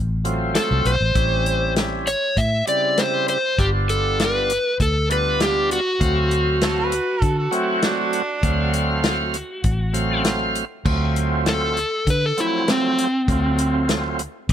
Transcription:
Already playing: A1
0.24 F#3 A3 C4 F4, closed hi-hat
0.55 A4, snare, closed hi-hat
0.71 C2
0.85 B1 C5, closed hi-hat
1.01 A1
1.15 A1 G3 C4 C#4 E4, kick, closed hi-hat
1.46 closed hi-hat
1.76 snare, closed hi-hat
2.07 C#5, closed hi-hat
2.37 A2 E5, kick, closed hi-hat
2.67 C#3 G3 C4 E4 D5, closed hi-hat
2.98 C5, snare, closed hi-hat
3.28 C5, closed hi-hat
3.59 G1 G3 B3 D4 F4 G4, kick, closed hi-hat
3.89 A4, closed hi-hat
4.20 B4, snare, closed hi-hat
4.50 closed hi-hat
4.80 D2 A4, kick, closed hi-hat
5.10 G3 B3 D4 F4 B4, closed hi-hat
5.40 G4, snare, closed hi-hat
5.71 F#4, closed hi-hat
6.00 D2 F#3 A3 C4 F5, kick, closed hi-hat
6.31 closed hi-hat
6.61 A4, snare, closed hi-hat
6.79 B4
6.92 closed hi-hat
7.22 D3 A4, kick, closed hi-hat
7.39 A4
7.51 F#3 A3 C4 E4 F#4, closed hi-hat
7.82 D4, snare, closed hi-hat
8.13 closed hi-hat
8.43 D2 F#3 A3 C4 F5, kick, closed hi-hat
8.73 closed hi-hat
9.04 snare, closed hi-hat
9.34 closed hi-hat
9.64 A1, kick, closed hi-hat
9.93 F#3 A3 C4 F5, closed hi-hat
10.25 snare, closed hi-hat
10.55 closed hi-hat
10.85 D2 F#3 A3 C4 F4, kick, crash
11.16 closed hi-hat
11.46 A4, snare, closed hi-hat
11.77 closed hi-hat
12.07 D3 B4, kick, closed hi-hat
12.26 A4
12.37 F3 F#3 A3 C4 E4, closed hi-hat
12.68 C4, snare, closed hi-hat
12.98 closed hi-hat
13.28 D2 F#3 A3 C4 F4, kick, closed hi-hat
13.58 closed hi-hat
13.89 snare, closed hi-hat
14.19 closed hi-hat
14.49 A1, kick, closed hi-hat

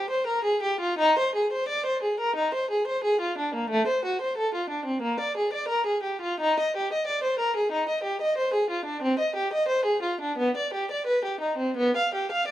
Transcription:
Already playing: G4
0.10 C5
0.27 A#4
0.44 G#4
0.62 G4
0.81 F4
0.98 D#4
1.19 C5
1.35 G#4
1.53 C5
1.69 D5
1.86 C5
2.03 G#4
2.20 A#4
2.36 D#4
2.54 C5
2.71 G#4
2.87 C5
3.04 G#4
3.21 F4
3.38 D4
3.55 A#3
3.70 A3
3.87 C5
4.05 F#4
4.21 C5
4.37 A4
4.54 F4
4.70 D4
4.85 C4
5.02 A#3
5.20 D5
5.37 G#4
5.53 D5
5.68 A#4
5.86 G#4
6.03 G4
6.21 F4
6.40 D#4
6.60 D#5
6.77 G4
6.93 D#5
7.07 D5
7.23 C5
7.39 A#4
7.56 G#4
7.72 D#4
7.89 D#5
8.03 G4
8.22 D#5
8.38 C5
8.54 G#4
8.70 F4
8.85 D4
9.02 C4
9.19 D#5
9.36 G4
9.53 D#5
9.68 C5
9.85 G#4
10.02 F4
10.21 D4
10.38 B3
10.57 D5
10.74 G4
10.91 D5
11.06 B4
11.25 G4
11.41 D#4
11.57 C4
11.77 B3
11.96 F5
12.14 G4
12.32 F5
12.48 D5

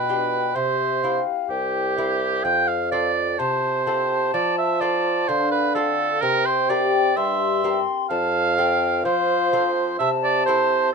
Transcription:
Already playing: B2 B4 G5
0.09 D4 F4 G4
0.55 C3 C5 E5
1.03 C4 E4 G4 F5
1.49 C2 G4 G5
1.97 C4 E4 G4 E5
2.44 F2 F5 G5
2.67 F5
2.91 C4 F4 A4 D5
3.38 C3 C5 A5
3.86 C4 F4 A4 A5
4.33 F3 D5
4.58 E5
4.81 C4 F4 A4 D5
5.28 D3 C5 F5
5.51 B4
5.75 C4 F4 A4
6.21 C3 A#4 G5
6.46 C5
6.69 C4 G4 A#4 D5
7.17 G2 E5 C6
7.64 C4 G4 A#4
8.10 F2 F5 A5
8.57 C4 F4 A4 G5
9.05 F3 C5 F5
9.53 C4 F4 A4
9.99 C3 E5 A5
10.24 D5
10.46 C4 E4 A4 C5

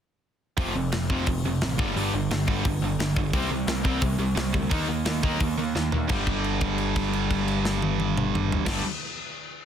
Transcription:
0.57 F1 F2 C3 F3, kick, open hi-hat
0.75 F1 F2 C3
0.92 F1 F2 C3, snare, open hi-hat
1.09 F1 F2 C3 F3, kick
1.26 F1 F2 C3, kick, open hi-hat
1.44 F1 F2 C3
1.61 A1 F2 C3, snare, open hi-hat
1.78 G1 G2 D3 G3, kick
1.95 G1 G2 D3 G3, open hi-hat
2.13 G1 G2 D3
2.30 G1 G2 D3, snare, open hi-hat
2.47 G1 G2 D3 G3, kick
2.64 G1 G2 D3, kick, open hi-hat
2.81 G1 G2 D3
2.98 G1 G2 D3, snare, open hi-hat
3.16 G1 G2 D3, kick
3.33 C2 C3 G3 C4, kick, open hi-hat
3.50 C2 C3 G3
3.67 C2 C3 G3, snare, open hi-hat
3.83 C2 C3 G3 C4, kick
4.01 C2 C3 G3, kick, open hi-hat
4.18 C2 C3 G3
4.36 C2 C3 G3, snare, open hi-hat
4.54 D2 C3 G3, kick
4.71 D#2 D#3 A#3 D#4, kick, open hi-hat
4.88 D#2 D#3 A#3
5.05 D#2 D#3 A#3, snare, open hi-hat
5.23 D#2 D#3 A#3 D#4, kick
5.40 D#2 D#3 A#3, kick, open hi-hat
5.58 D#2 D#3 A#3
5.75 D#2 D#3 A#3, snare
5.92 D#2 D#3 A#3, floor tom
6.09 G1 G2 D3 G3, kick, crash
6.27 kick, crash
6.44 crash
6.61 kick, crash
6.78 crash
6.96 kick, crash
7.13 crash
7.30 kick, crash
7.48 crash
7.65 snare
7.82 high tom
8.00 high tom
8.17 mid tom
8.35 mid tom
8.52 floor tom
8.66 G1 G2 D3, kick, snare, crash
8.70 G3

